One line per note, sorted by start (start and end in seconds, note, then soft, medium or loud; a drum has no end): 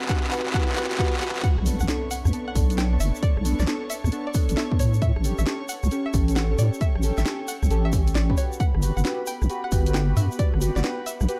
0.00 1.44 C4 medium
0.00 1.45 B4 medium
0.00 6.36 B4 medium
0.00 2.55 E5 medium
0.00 1.45 B5 medium
0.00 clap medium
0.00 riser medium
0.05 clap medium
0.09 0.24 F#4 loud
0.09 0.24 G4 loud
0.09 0.24 B4 loud
0.09 0.28 F#5 loud
0.09 kick loud
0.09 clap loud
0.09 closed hi-hat medium
0.16 clap medium
0.24 clap medium
0.28 clap medium
0.32 0.46 F#4 loud
0.32 0.46 G4 medium
0.32 0.46 B4 loud
0.32 0.51 F#5 loud
0.32 clap loud
0.32 open hi-hat loud
0.39 clap medium
0.46 clap medium
0.50 0.69 F#4 loud
0.50 0.69 G4 medium
0.50 0.69 B4 loud
0.50 clap medium
0.50 swell medium
0.54 0.73 F#5 loud
0.54 kick loud
0.54 clap loud
0.54 closed hi-hat medium
0.61 clap medium
0.69 clap medium
0.73 0.91 F#4 loud
0.73 0.91 G4 medium
0.73 0.91 B4 loud
0.73 0.95 F#5 loud
0.73 clap loud
0.76 clap loud
0.76 open hi-hat loud
0.84 clap loud
0.91 clap medium
0.91 closed hi-hat medium
0.95 1.18 F#5 loud
0.95 clap loud
0.99 1.14 F#4 loud
0.99 1.14 G4 loud
0.99 1.14 B4 loud
0.99 kick loud
0.99 clap loud
0.99 open hi-hat medium
1.06 clap medium
1.13 clap medium
1.17 1.36 F#4 loud
1.17 1.36 G4 medium
1.17 1.36 B4 loud
1.17 1.40 F#5 loud
1.17 clap loud
1.21 clap loud
1.21 open hi-hat loud
1.28 clap loud
1.36 clap medium
1.36 closed hi-hat soft
1.40 8.61 C#5 medium
1.40 1.63 F#5 loud
1.40 8.61 C#6 medium
1.40 kick loud
1.40 clap loud
1.40 impact medium
1.40 shaker soft
1.44 5.02 D4 medium
1.44 closed hi-hat medium
1.58 1.75 B1 medium
1.58 cross-stick medium
1.66 1.81 B3 medium
1.66 1.81 D4 medium
1.66 1.81 A4 loud
1.66 open hi-hat loud
1.66 shaker medium
1.80 1.87 B1 medium
1.80 1.97 F#5 medium
1.80 cross-stick soft
1.80 shaker medium
1.88 2.03 B3 medium
1.88 2.03 D4 medium
1.88 2.03 A4 loud
1.88 snare loud
1.88 closed hi-hat medium
1.88 shaker soft
2.11 2.30 F#5 medium
2.11 open hi-hat loud
2.11 shaker medium
2.25 2.32 E2 medium
2.25 cross-stick medium
2.25 shaker soft
2.32 2.48 B3 medium
2.32 2.48 D4 medium
2.32 2.48 A4 loud
2.32 5.96 A5 medium
2.32 closed hi-hat medium
2.32 shaker soft
2.48 2.64 F#5 loud
2.55 2.98 B1 medium
2.55 2.68 B3 loud
2.55 2.68 D4 medium
2.55 2.68 A4 loud
2.55 kick loud
2.55 open hi-hat loud
2.55 shaker medium
2.70 2.89 B3 medium
2.70 2.89 D4 medium
2.70 2.89 A4 loud
2.70 closed hi-hat medium
2.70 shaker soft
2.78 2.93 G5 medium
2.78 snare loud
2.78 closed hi-hat medium
2.78 shaker soft
2.93 3.43 B3 medium
2.93 3.43 D4 medium
2.93 3.43 A4 medium
3.00 3.12 F#1 loud
3.00 3.15 E5 medium
3.00 open hi-hat loud
3.00 shaker medium
3.15 shaker medium
3.23 3.42 D5 loud
3.23 kick loud
3.23 closed hi-hat medium
3.23 shaker soft
3.37 3.54 B1 loud
3.37 cross-stick medium
3.45 3.60 B3 medium
3.45 3.60 D4 medium
3.45 3.60 A4 loud
3.45 open hi-hat loud
3.45 shaker medium
3.59 3.66 B1 medium
3.59 3.76 D5 medium
3.59 cross-stick soft
3.59 snare medium
3.59 shaker medium
3.67 3.82 B3 medium
3.67 3.82 D4 medium
3.67 3.82 A4 loud
3.67 snare loud
3.67 closed hi-hat medium
3.67 shaker soft
3.90 4.09 E5 medium
3.90 open hi-hat loud
3.90 shaker medium
4.04 4.11 E2 medium
4.04 cross-stick medium
4.04 shaker medium
4.12 4.27 B3 medium
4.12 4.27 D4 medium
4.12 4.27 A4 loud
4.12 closed hi-hat medium
4.12 shaker soft
4.27 4.43 D5 loud
4.34 4.47 B3 loud
4.34 4.47 D4 medium
4.34 4.47 A4 loud
4.34 kick loud
4.34 open hi-hat loud
4.34 shaker loud
4.49 4.55 A1 medium
4.49 4.68 B3 loud
4.49 4.68 D4 medium
4.49 4.68 A4 loud
4.49 closed hi-hat medium
4.49 shaker medium
4.57 4.72 E5 medium
4.57 snare loud
4.57 open hi-hat medium
4.57 shaker soft
4.72 5.01 B3 medium
4.72 5.01 D4 medium
4.72 5.01 A4 medium
4.72 kick loud
4.79 5.12 A2 loud
4.79 4.94 C#5 medium
4.79 open hi-hat loud
4.79 shaker medium
4.94 shaker medium
5.02 9.02 C#4 medium
5.02 5.21 E5 loud
5.02 kick loud
5.02 closed hi-hat medium
5.02 shaker soft
5.12 9.84 A4 medium
5.16 5.33 A1 loud
5.16 cross-stick medium
5.24 5.39 C#4 medium
5.24 5.39 G4 medium
5.24 5.39 A4 loud
5.24 open hi-hat loud
5.24 shaker loud
5.38 5.45 A1 medium
5.38 5.55 E5 loud
5.38 cross-stick soft
5.38 shaker medium
5.46 5.61 C#4 loud
5.46 5.61 G4 medium
5.46 5.61 A4 loud
5.46 snare loud
5.46 closed hi-hat medium
5.46 shaker soft
5.69 5.88 F#5 medium
5.69 open hi-hat loud
5.69 shaker medium
5.83 5.90 C#2 medium
5.83 8.38 G5 medium
5.83 cross-stick medium
5.83 shaker medium
5.91 6.06 C#4 medium
5.91 6.06 G4 medium
5.91 6.06 A4 loud
5.91 closed hi-hat medium
5.91 shaker soft
6.06 6.22 E5 loud
6.14 6.56 A1 medium
6.14 6.26 C#4 loud
6.14 6.26 G4 medium
6.14 6.26 A4 loud
6.14 kick loud
6.14 open hi-hat loud
6.14 shaker loud
6.28 6.47 C#4 medium
6.28 6.47 G4 medium
6.28 6.47 A4 loud
6.28 closed hi-hat medium
6.28 shaker medium
6.36 6.51 F#5 medium
6.36 snare loud
6.36 closed hi-hat medium
6.36 shaker soft
6.51 7.01 C#4 medium
6.51 7.01 G4 medium
6.51 7.01 A4 medium
6.59 6.70 A2 loud
6.59 6.74 D5 medium
6.59 open hi-hat loud
6.59 shaker loud
6.73 shaker medium
6.81 7.00 E5 loud
6.81 kick loud
6.81 closed hi-hat medium
6.81 shaker soft
6.95 7.12 A1 loud
6.95 cross-stick medium
7.02 7.18 C#4 loud
7.02 7.18 G4 medium
7.02 7.18 A4 loud
7.02 open hi-hat loud
7.02 shaker medium
7.18 7.24 A1 medium
7.18 7.34 E5 loud
7.18 cross-stick soft
7.18 snare medium
7.18 shaker soft
7.26 7.41 C#4 medium
7.26 7.40 G4 medium
7.26 7.40 A4 loud
7.26 snare loud
7.26 closed hi-hat medium
7.26 shaker soft
7.48 7.67 F#5 medium
7.48 open hi-hat loud
7.48 shaker loud
7.63 7.69 C#2 medium
7.63 cross-stick medium
7.63 shaker medium
7.70 8.35 A1 medium
7.70 7.85 C#4 medium
7.70 7.85 G4 medium
7.70 7.85 A4 loud
7.70 closed hi-hat medium
7.70 shaker soft
7.85 8.01 E5 loud
7.93 8.26 C#4 medium
7.93 8.26 G4 medium
7.93 8.26 A4 loud
7.93 kick loud
7.93 open hi-hat loud
7.93 shaker loud
8.07 closed hi-hat medium
8.07 shaker medium
8.15 8.30 D5 medium
8.15 snare loud
8.15 open hi-hat medium
8.15 shaker soft
8.30 8.36 C#4 loud
8.30 8.36 G4 medium
8.30 8.36 B4 loud
8.30 kick loud
8.37 11.40 B3 medium
8.37 8.52 F#4 medium
8.37 8.52 G4 medium
8.37 8.52 B4 medium
8.37 8.53 C#5 medium
8.37 open hi-hat medium
8.37 shaker loud
8.52 shaker medium
8.60 11.40 B4 medium
8.60 8.79 F#5 medium
8.60 11.40 B5 medium
8.60 kick loud
8.60 closed hi-hat medium
8.60 shaker soft
8.75 8.91 G1 loud
8.75 cross-stick medium
8.82 8.97 F#4 medium
8.82 8.97 G4 medium
8.82 11.40 G4 medium
8.82 8.97 B4 loud
8.82 open hi-hat loud
8.82 shaker medium
8.97 9.03 G1 medium
8.97 9.13 F#5 medium
8.97 cross-stick soft
8.97 shaker soft
9.05 9.20 F#4 loud
9.05 9.20 G4 medium
9.05 9.20 B4 loud
9.05 snare loud
9.05 closed hi-hat medium
9.05 shaker soft
9.20 11.40 F#5 medium
9.27 9.46 G5 medium
9.27 open hi-hat loud
9.27 shaker medium
9.42 9.48 B1 medium
9.42 cross-stick medium
9.42 shaker soft
9.50 9.64 F#4 medium
9.50 9.64 G4 medium
9.50 9.64 B4 loud
9.50 closed hi-hat medium
9.50 shaker soft
9.64 9.80 F#5 medium
9.72 10.14 G1 medium
9.72 9.84 F#4 loud
9.72 9.84 G4 medium
9.72 9.84 B4 loud
9.72 kick loud
9.72 open hi-hat loud
9.72 shaker loud
9.86 10.05 F#4 medium
9.86 10.05 G4 medium
9.86 10.05 B4 loud
9.86 closed hi-hat medium
9.86 shaker soft
9.94 10.09 G5 medium
9.94 snare loud
9.94 closed hi-hat medium
9.94 shaker soft
10.09 10.60 F#4 medium
10.09 10.60 G4 medium
10.09 10.60 B4 medium
10.17 10.28 G2 loud
10.17 10.32 E5 medium
10.17 open hi-hat loud
10.17 shaker medium
10.31 shaker medium
10.39 10.58 D5 loud
10.39 kick loud
10.39 closed hi-hat medium
10.39 shaker soft
10.54 10.70 G1 loud
10.54 cross-stick medium
10.61 10.76 F#4 medium
10.61 10.76 G4 medium
10.61 10.76 B4 loud
10.61 open hi-hat loud
10.61 shaker medium
10.76 10.82 G1 medium
10.76 10.92 D5 medium
10.76 cross-stick soft
10.76 snare medium
10.76 shaker soft
10.83 10.99 F#4 medium
10.83 10.99 G4 medium
10.83 10.99 B4 loud
10.83 snare loud
10.83 closed hi-hat medium
10.83 shaker soft
11.06 11.25 E5 medium
11.06 open hi-hat loud
11.06 shaker loud
11.20 11.27 B1 medium
11.20 cross-stick medium
11.20 shaker medium
11.29 11.40 F#4 loud
11.29 11.40 G4 medium
11.29 11.40 B4 loud
11.29 closed hi-hat medium
11.29 shaker soft